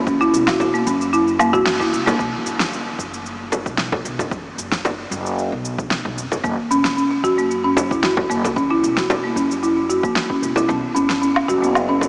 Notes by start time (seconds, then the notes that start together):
Already playing: C#2
0.07 C#4, kick, cabasa
0.21 E4, cabasa
0.34 E1, cabasa
0.47 F#4, kick, snare, cabasa, low woodblock
0.60 frame drum, cabasa
0.74 A#3, cabasa
0.86 F#2 C#4, cabasa
1.01 cabasa
1.13 E4, cabasa
1.28 cabasa
1.39 A#3, cabasa, low woodblock
1.53 F#1 F#4, kick, cabasa
1.66 snare, cabasa
1.80 E4, kick, cabasa
1.93 C#2, cabasa
2.06 A#1 A#3, frame drum, cabasa
2.19 B1, kick, cabasa
2.46 F#1, cabasa
2.60 snare, cabasa
2.73 cabasa
2.99 F#1, kick, cabasa
3.14 cabasa
3.26 cabasa
3.52 frame drum, cabasa
3.66 B1, kick, cabasa
3.78 snare, cabasa
3.92 kick, frame drum
4.05 B1, cabasa
4.19 F#1, frame drum, cabasa
4.31 kick, cabasa
4.58 F#1, cabasa
4.72 kick, snare, cabasa
4.85 frame drum, cabasa
5.11 F#1, cabasa
5.26 cabasa
5.39 cabasa
5.52 B1
5.65 cabasa
5.78 kick, cabasa
5.91 snare, cabasa
6.05 B1, kick
6.18 F#1, cabasa
6.32 frame drum, cabasa
6.44 F#1 A#3, kick, cabasa
6.71 E1 C#4, cabasa
6.85 snare, cabasa
6.97 C#4, cabasa
7.24 F#2 F#4, kick, cabasa
7.38 A#3, cabasa
7.51 cabasa
7.64 C#4
7.77 frame drum, cabasa
7.91 F#1 E4, kick, cabasa
8.03 F#4, snare, cabasa
8.17 kick, frame drum
8.30 F#1 A#3, cabasa
8.44 C#2, frame drum, cabasa
8.56 C#4, kick, cabasa
8.71 E4
8.83 E1, cabasa
8.97 F#4, kick, snare, cabasa
9.10 frame drum, cabasa
9.24 A#3
9.36 F#2 C#4, cabasa
9.51 cabasa
9.63 E4, cabasa
9.90 F#4, cabasa
10.03 A#3, kick, cabasa
10.16 snare, cabasa
10.30 C#4, kick
10.42 E1, cabasa
10.56 E4, frame drum, cabasa
10.69 B1 B3, kick, cabasa
10.95 F#1 C#4, cabasa
11.10 snare, cabasa
11.22 C#4, cabasa
11.36 low woodblock
11.48 F#1 F#4, kick, cabasa
11.62 B3, cabasa
11.75 cabasa, low woodblock
11.89 C#4
12.01 frame drum, cabasa